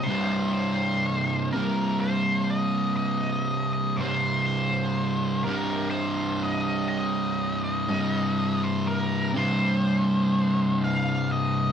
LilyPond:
<<
  \new Staff \with { instrumentName = "Lead electric guitar" } { \time 4/4 \key c \minor \tempo 4 = 61 c''8 c''4 bes'8 c''8 ees''8 ees''8. ees''16 | c''8 c''4 bes'8 c''8 ees''8 ees''8. ees''16~ | ees''8. c''16 bes'8 c''4. f''8 ees''8 | }
  \new Staff \with { instrumentName = "Distorted electric guitar" } { \clef bass \time 4/4 \key c \minor <c, g, c>4. <c, g, c>2~ <c, g, c>8 | <c, g, c>4. <c, g, c>2~ <c, g, c>8 | <c, g, c>4. <c, g, c>2~ <c, g, c>8 | }
>>